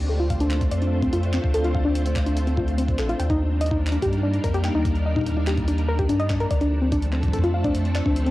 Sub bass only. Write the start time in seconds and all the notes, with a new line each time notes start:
Already playing: D2
0.71 F2
1.13 F2
1.44 D2
2.99 A1
3.20 D#2
4.02 G2
4.44 F2
4.75 D#2
6.09 G2
6.51 D2
7.33 F2
7.75 F2
8.06 D2